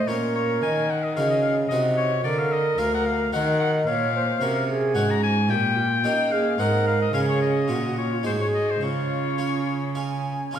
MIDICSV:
0, 0, Header, 1, 5, 480
1, 0, Start_track
1, 0, Tempo, 541028
1, 558, Time_signature, 3, 2, 24, 8
1, 5356, Tempo, 553506
1, 7276, Tempo, 575816
1, 9227, End_track
2, 0, Start_track
2, 0, Title_t, "Oboe"
2, 0, Program_c, 0, 68
2, 72, Note_on_c, 0, 73, 69
2, 312, Note_off_c, 0, 73, 0
2, 317, Note_on_c, 0, 73, 84
2, 553, Note_off_c, 0, 73, 0
2, 557, Note_on_c, 0, 80, 81
2, 801, Note_on_c, 0, 78, 67
2, 815, Note_off_c, 0, 80, 0
2, 924, Note_on_c, 0, 75, 77
2, 937, Note_off_c, 0, 78, 0
2, 1026, Note_off_c, 0, 75, 0
2, 1031, Note_on_c, 0, 77, 84
2, 1152, Note_off_c, 0, 77, 0
2, 1159, Note_on_c, 0, 75, 63
2, 1258, Note_off_c, 0, 75, 0
2, 1263, Note_on_c, 0, 77, 79
2, 1374, Note_off_c, 0, 77, 0
2, 1497, Note_on_c, 0, 75, 82
2, 1609, Note_off_c, 0, 75, 0
2, 1753, Note_on_c, 0, 73, 97
2, 1985, Note_off_c, 0, 73, 0
2, 1990, Note_on_c, 0, 74, 88
2, 2120, Note_on_c, 0, 77, 90
2, 2133, Note_off_c, 0, 74, 0
2, 2240, Note_on_c, 0, 75, 79
2, 2253, Note_off_c, 0, 77, 0
2, 2477, Note_on_c, 0, 77, 86
2, 2490, Note_off_c, 0, 75, 0
2, 2597, Note_off_c, 0, 77, 0
2, 2612, Note_on_c, 0, 78, 79
2, 2717, Note_on_c, 0, 77, 86
2, 2730, Note_off_c, 0, 78, 0
2, 2953, Note_off_c, 0, 77, 0
2, 2958, Note_on_c, 0, 78, 96
2, 3188, Note_off_c, 0, 78, 0
2, 3193, Note_on_c, 0, 78, 96
2, 3300, Note_off_c, 0, 78, 0
2, 3431, Note_on_c, 0, 77, 107
2, 4135, Note_off_c, 0, 77, 0
2, 4392, Note_on_c, 0, 78, 82
2, 4529, Note_on_c, 0, 82, 84
2, 4542, Note_off_c, 0, 78, 0
2, 4638, Note_off_c, 0, 82, 0
2, 4643, Note_on_c, 0, 80, 109
2, 4879, Note_on_c, 0, 79, 94
2, 4892, Note_off_c, 0, 80, 0
2, 5602, Note_on_c, 0, 77, 96
2, 5615, Note_off_c, 0, 79, 0
2, 5845, Note_on_c, 0, 78, 88
2, 5858, Note_off_c, 0, 77, 0
2, 6079, Note_off_c, 0, 78, 0
2, 6083, Note_on_c, 0, 77, 92
2, 6195, Note_off_c, 0, 77, 0
2, 6207, Note_on_c, 0, 75, 84
2, 6312, Note_off_c, 0, 75, 0
2, 6317, Note_on_c, 0, 77, 101
2, 6369, Note_off_c, 0, 77, 0
2, 6442, Note_on_c, 0, 73, 83
2, 6549, Note_off_c, 0, 73, 0
2, 6555, Note_on_c, 0, 75, 69
2, 7026, Note_off_c, 0, 75, 0
2, 7043, Note_on_c, 0, 73, 77
2, 7276, Note_off_c, 0, 73, 0
2, 7288, Note_on_c, 0, 72, 78
2, 7338, Note_off_c, 0, 72, 0
2, 7410, Note_on_c, 0, 73, 68
2, 7459, Note_off_c, 0, 73, 0
2, 7523, Note_on_c, 0, 75, 83
2, 7654, Note_on_c, 0, 72, 71
2, 7667, Note_off_c, 0, 75, 0
2, 7763, Note_on_c, 0, 73, 74
2, 7776, Note_off_c, 0, 72, 0
2, 8712, Note_off_c, 0, 73, 0
2, 9227, End_track
3, 0, Start_track
3, 0, Title_t, "Flute"
3, 0, Program_c, 1, 73
3, 67, Note_on_c, 1, 70, 72
3, 1024, Note_off_c, 1, 70, 0
3, 1030, Note_on_c, 1, 68, 55
3, 1505, Note_off_c, 1, 68, 0
3, 1508, Note_on_c, 1, 66, 72
3, 1982, Note_off_c, 1, 66, 0
3, 1986, Note_on_c, 1, 70, 85
3, 2934, Note_off_c, 1, 70, 0
3, 2960, Note_on_c, 1, 70, 77
3, 3437, Note_on_c, 1, 73, 82
3, 3450, Note_off_c, 1, 70, 0
3, 3674, Note_off_c, 1, 73, 0
3, 3681, Note_on_c, 1, 72, 75
3, 3922, Note_on_c, 1, 70, 70
3, 3935, Note_off_c, 1, 72, 0
3, 4164, Note_on_c, 1, 68, 84
3, 4177, Note_off_c, 1, 70, 0
3, 4634, Note_off_c, 1, 68, 0
3, 4877, Note_on_c, 1, 67, 75
3, 5109, Note_on_c, 1, 65, 66
3, 5122, Note_off_c, 1, 67, 0
3, 5350, Note_off_c, 1, 65, 0
3, 5356, Note_on_c, 1, 67, 68
3, 5410, Note_off_c, 1, 67, 0
3, 5590, Note_on_c, 1, 68, 76
3, 5829, Note_on_c, 1, 70, 76
3, 5842, Note_off_c, 1, 68, 0
3, 6299, Note_off_c, 1, 70, 0
3, 6304, Note_on_c, 1, 68, 73
3, 6787, Note_on_c, 1, 66, 61
3, 6800, Note_off_c, 1, 68, 0
3, 7039, Note_on_c, 1, 65, 58
3, 7052, Note_off_c, 1, 66, 0
3, 7269, Note_on_c, 1, 68, 66
3, 7282, Note_off_c, 1, 65, 0
3, 7748, Note_off_c, 1, 68, 0
3, 7758, Note_on_c, 1, 65, 64
3, 8432, Note_off_c, 1, 65, 0
3, 8697, Note_on_c, 1, 80, 78
3, 9193, Note_on_c, 1, 89, 105
3, 9206, Note_off_c, 1, 80, 0
3, 9227, Note_off_c, 1, 89, 0
3, 9227, End_track
4, 0, Start_track
4, 0, Title_t, "Harpsichord"
4, 0, Program_c, 2, 6
4, 67, Note_on_c, 2, 61, 36
4, 72, Note_on_c, 2, 46, 46
4, 75, Note_on_c, 2, 65, 36
4, 83, Note_on_c, 2, 70, 39
4, 518, Note_off_c, 2, 61, 0
4, 520, Note_off_c, 2, 46, 0
4, 522, Note_off_c, 2, 65, 0
4, 526, Note_off_c, 2, 70, 0
4, 551, Note_on_c, 2, 51, 53
4, 998, Note_off_c, 2, 51, 0
4, 1035, Note_on_c, 2, 49, 45
4, 1037, Note_on_c, 2, 63, 41
4, 1037, Note_on_c, 2, 66, 41
4, 1043, Note_on_c, 2, 70, 43
4, 1383, Note_off_c, 2, 63, 0
4, 1383, Note_off_c, 2, 66, 0
4, 1387, Note_off_c, 2, 70, 0
4, 1481, Note_off_c, 2, 49, 0
4, 1517, Note_on_c, 2, 48, 50
4, 1517, Note_on_c, 2, 63, 42
4, 1521, Note_on_c, 2, 66, 42
4, 1523, Note_on_c, 2, 70, 42
4, 1862, Note_off_c, 2, 63, 0
4, 1864, Note_off_c, 2, 66, 0
4, 1865, Note_off_c, 2, 70, 0
4, 1960, Note_off_c, 2, 48, 0
4, 1986, Note_on_c, 2, 50, 51
4, 2437, Note_off_c, 2, 50, 0
4, 2466, Note_on_c, 2, 38, 55
4, 2467, Note_on_c, 2, 65, 46
4, 2468, Note_on_c, 2, 68, 44
4, 2471, Note_on_c, 2, 70, 50
4, 2817, Note_off_c, 2, 65, 0
4, 2818, Note_off_c, 2, 68, 0
4, 2820, Note_off_c, 2, 70, 0
4, 2917, Note_off_c, 2, 38, 0
4, 2950, Note_on_c, 2, 51, 52
4, 2951, Note_on_c, 2, 63, 44
4, 2958, Note_on_c, 2, 66, 39
4, 2961, Note_on_c, 2, 70, 37
4, 3393, Note_off_c, 2, 51, 0
4, 3393, Note_off_c, 2, 63, 0
4, 3397, Note_off_c, 2, 66, 0
4, 3398, Note_off_c, 2, 70, 0
4, 3434, Note_on_c, 2, 46, 57
4, 3878, Note_off_c, 2, 46, 0
4, 3907, Note_on_c, 2, 48, 58
4, 3910, Note_on_c, 2, 61, 42
4, 3915, Note_on_c, 2, 66, 46
4, 3917, Note_on_c, 2, 73, 50
4, 4258, Note_off_c, 2, 61, 0
4, 4260, Note_off_c, 2, 66, 0
4, 4262, Note_off_c, 2, 73, 0
4, 4356, Note_off_c, 2, 48, 0
4, 4386, Note_on_c, 2, 61, 42
4, 4391, Note_on_c, 2, 44, 52
4, 4392, Note_on_c, 2, 66, 44
4, 4399, Note_on_c, 2, 73, 47
4, 4734, Note_off_c, 2, 61, 0
4, 4737, Note_off_c, 2, 66, 0
4, 4741, Note_off_c, 2, 73, 0
4, 4835, Note_off_c, 2, 44, 0
4, 4869, Note_on_c, 2, 46, 59
4, 5318, Note_off_c, 2, 46, 0
4, 5357, Note_on_c, 2, 61, 49
4, 5359, Note_on_c, 2, 63, 48
4, 5361, Note_on_c, 2, 58, 52
4, 5365, Note_on_c, 2, 75, 47
4, 5701, Note_off_c, 2, 61, 0
4, 5702, Note_off_c, 2, 63, 0
4, 5706, Note_off_c, 2, 75, 0
4, 5802, Note_off_c, 2, 58, 0
4, 5830, Note_on_c, 2, 44, 50
4, 5833, Note_on_c, 2, 60, 42
4, 5840, Note_on_c, 2, 63, 39
4, 5842, Note_on_c, 2, 75, 44
4, 6275, Note_off_c, 2, 44, 0
4, 6276, Note_off_c, 2, 60, 0
4, 6280, Note_off_c, 2, 63, 0
4, 6281, Note_off_c, 2, 75, 0
4, 6305, Note_on_c, 2, 61, 42
4, 6307, Note_on_c, 2, 49, 56
4, 6311, Note_on_c, 2, 65, 40
4, 6320, Note_on_c, 2, 73, 44
4, 6753, Note_off_c, 2, 61, 0
4, 6754, Note_off_c, 2, 49, 0
4, 6756, Note_off_c, 2, 65, 0
4, 6761, Note_off_c, 2, 73, 0
4, 6778, Note_on_c, 2, 61, 40
4, 6780, Note_on_c, 2, 46, 47
4, 6783, Note_on_c, 2, 65, 38
4, 6788, Note_on_c, 2, 73, 38
4, 7235, Note_off_c, 2, 61, 0
4, 7236, Note_off_c, 2, 46, 0
4, 7237, Note_off_c, 2, 65, 0
4, 7240, Note_off_c, 2, 73, 0
4, 7260, Note_on_c, 2, 44, 46
4, 7260, Note_on_c, 2, 63, 36
4, 7269, Note_on_c, 2, 66, 35
4, 7271, Note_on_c, 2, 68, 36
4, 7710, Note_off_c, 2, 44, 0
4, 7710, Note_off_c, 2, 63, 0
4, 7714, Note_off_c, 2, 66, 0
4, 7715, Note_off_c, 2, 68, 0
4, 7741, Note_on_c, 2, 49, 44
4, 8218, Note_on_c, 2, 61, 36
4, 8219, Note_on_c, 2, 65, 36
4, 8224, Note_on_c, 2, 68, 42
4, 8565, Note_off_c, 2, 61, 0
4, 8565, Note_off_c, 2, 65, 0
4, 8569, Note_off_c, 2, 68, 0
4, 8692, Note_on_c, 2, 61, 31
4, 8693, Note_on_c, 2, 65, 33
4, 8695, Note_on_c, 2, 68, 36
4, 8981, Note_off_c, 2, 49, 0
4, 9050, Note_off_c, 2, 61, 0
4, 9051, Note_off_c, 2, 65, 0
4, 9052, Note_off_c, 2, 68, 0
4, 9161, Note_on_c, 2, 61, 48
4, 9176, Note_on_c, 2, 65, 47
4, 9185, Note_on_c, 2, 68, 48
4, 9198, Note_on_c, 2, 49, 55
4, 9227, Note_off_c, 2, 49, 0
4, 9227, Note_off_c, 2, 61, 0
4, 9227, Note_off_c, 2, 65, 0
4, 9227, Note_off_c, 2, 68, 0
4, 9227, End_track
5, 0, Start_track
5, 0, Title_t, "Cello"
5, 0, Program_c, 3, 42
5, 75, Note_on_c, 3, 46, 56
5, 556, Note_on_c, 3, 51, 66
5, 569, Note_off_c, 3, 46, 0
5, 1034, Note_on_c, 3, 49, 65
5, 1047, Note_off_c, 3, 51, 0
5, 1503, Note_off_c, 3, 49, 0
5, 1508, Note_on_c, 3, 48, 60
5, 1981, Note_off_c, 3, 48, 0
5, 1992, Note_on_c, 3, 50, 66
5, 2466, Note_off_c, 3, 50, 0
5, 2475, Note_on_c, 3, 38, 62
5, 2947, Note_off_c, 3, 38, 0
5, 2961, Note_on_c, 3, 51, 65
5, 3424, Note_off_c, 3, 51, 0
5, 3440, Note_on_c, 3, 46, 68
5, 3884, Note_off_c, 3, 46, 0
5, 3913, Note_on_c, 3, 48, 63
5, 4397, Note_on_c, 3, 44, 66
5, 4410, Note_off_c, 3, 48, 0
5, 4867, Note_on_c, 3, 46, 72
5, 4880, Note_off_c, 3, 44, 0
5, 5352, Note_on_c, 3, 58, 68
5, 5365, Note_off_c, 3, 46, 0
5, 5829, Note_off_c, 3, 58, 0
5, 5834, Note_on_c, 3, 44, 69
5, 6302, Note_off_c, 3, 44, 0
5, 6313, Note_on_c, 3, 49, 65
5, 6795, Note_on_c, 3, 46, 59
5, 6808, Note_off_c, 3, 49, 0
5, 7280, Note_on_c, 3, 44, 58
5, 7292, Note_off_c, 3, 46, 0
5, 7744, Note_off_c, 3, 44, 0
5, 7749, Note_on_c, 3, 49, 62
5, 8993, Note_off_c, 3, 49, 0
5, 9195, Note_on_c, 3, 49, 69
5, 9227, Note_off_c, 3, 49, 0
5, 9227, End_track
0, 0, End_of_file